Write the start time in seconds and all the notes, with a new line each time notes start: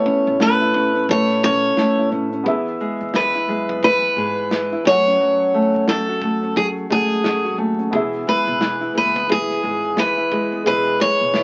Already playing: E3 A3 B3 E4 A4 B4 C#5
0.06 C#4, kick
0.27 A1, shaker
0.40 A3 B4, snare, shaker
0.61 E4, shaker
0.74 C#4, kick
0.95 C#4, shaker
1.09 A2 A3 B4 C#5, kick, shaker
1.29 snare, shaker
1.43 B1 C#4 C#5, kick
1.63 shaker
1.77 A3, muted upright bass stroke, snare, shaker
1.98 A1 E4, shaker
2.12 A2 C#4, shaker
2.33 C#4, shaker
2.44 E2 E3 B3 G#4 B4 E5, kick, shaker
2.67 shaker
2.80 G#3, shaker
3.00 E2, shaker
3.14 E3 B4, snare, shaker
3.34 E4, shaker
3.48 F#2 G#3
3.69 B3, kick, shaker
3.82 E3 B4, kick, shaker
4.03 shaker
4.16 G#2 G#3, shaker
4.37 shaker
4.51 E3, snare, shaker
4.72 E4, shaker
4.84 F#2 F#3 A3 C#5 G#5, kick, shaker
4.88 F#5
5.06 C#4, shaker
5.20 F#3, shaker
5.40 shaker
5.54 A3, shaker
5.74 F#2, shaker
5.88 F#3 A4, snare, shaker
6.08 F#4, shaker
6.22 A3, kick
6.42 C#4, shaker
6.56 F#3 G#4, kick, shaker
6.77 shaker
6.89 E2 G#3 A3 G#4 F#5, kick
6.96 A3
7.10 shaker
7.24 F#2 F#3, snare, shaker
7.45 F#4, shaker
7.58 D#2 A3
7.79 C#4, shaker
7.91 E1 E3 B3 G#4, kick, shaker
7.95 E5
8.14 shaker
8.27 G#3 B4, shaker
8.47 E1, shaker
8.61 E3, snare, shaker
8.81 E4, shaker
8.95 F#1 G#3 B4
9.15 B3, kick, shaker
9.29 E3 G#4, kick, shaker
9.50 snare, shaker
9.63 G#1 G#3, shaker
9.83 shaker
9.97 E3 B4, snare, shaker
10.18 E4, shaker
10.32 G#3, kick
10.52 B3, shaker
10.64 E1 E3 G#3 E4 G#4 B4, kick, shaker
10.69 B4
10.87 shaker
10.99 G#3 C#5, kick
11.20 E1, shaker
11.34 E3, snare, shaker